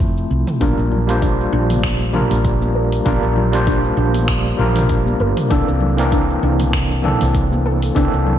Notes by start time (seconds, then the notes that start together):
Already playing: F1 F3 A3 C4 E4 A4 C5
0.00 kick, shaker
0.17 shaker
0.31 C2
0.47 mid tom, shaker
0.60 A#1 G3 A#3 D4 F4 A#4, kick, open hi-hat, high conga, shaker
0.77 A#1, shaker
0.92 low conga
1.07 G3 A#3 D4 F4 C5, open hi-hat, high conga, shaker
1.22 D4, kick, open hi-hat, shaker
1.40 shaker
1.53 A#1 D4
1.70 mid tom, open hi-hat, high conga, shaker
1.83 finger snap, kick, open hi-hat, shaker
2.01 shaker
2.13 G3 A#3 D4 F4 A#4, mid tom, high conga, low conga
2.31 A#1, open hi-hat, shaker
2.45 kick, open hi-hat, shaker
2.62 high conga, shaker
2.75 A#4
2.92 open hi-hat, shaker
3.05 A#1 G3 A#3 D4 F4 A#4, kick, open hi-hat, high conga, shaker
3.23 A#1, shaker
3.37 low conga
3.52 G3 A#3 D4 F4 C5, open hi-hat, high conga, shaker
3.67 D4, kick, open hi-hat, shaker
3.85 shaker
3.97 A#1 D4
4.14 open hi-hat, high conga, shaker
4.28 finger snap, kick, open hi-hat, shaker
4.46 shaker
4.57 A#1 G3 A#3 D4 F4 A#4, high conga, low conga
4.76 mid tom, open hi-hat, shaker
4.89 kick, open hi-hat, shaker
5.06 high conga, shaker
5.20 G1 A#4
5.37 mid tom, open hi-hat, shaker
5.50 C2 E3 A#3 C4 D4 A4, kick, open hi-hat, high conga, shaker
5.68 C2, shaker
5.80 low conga
5.97 E3 A#3 C4 D4 A#4, open hi-hat, high conga, shaker
6.12 D4, kick, open hi-hat, shaker
6.30 shaker
6.43 C2 D4
6.59 mid tom, open hi-hat, high conga, shaker
6.73 finger snap, kick, open hi-hat, shaker
6.91 shaker
7.03 E3 A#3 C4 D4 A4, mid tom, high conga, low conga
7.21 C2, open hi-hat, shaker
7.35 kick, open hi-hat, shaker
7.52 high conga, shaker
7.66 A4
7.82 open hi-hat, shaker
7.95 C2 E3 A#3 C4 D4 A4, kick, open hi-hat, high conga, shaker
8.13 C2, shaker
8.27 low conga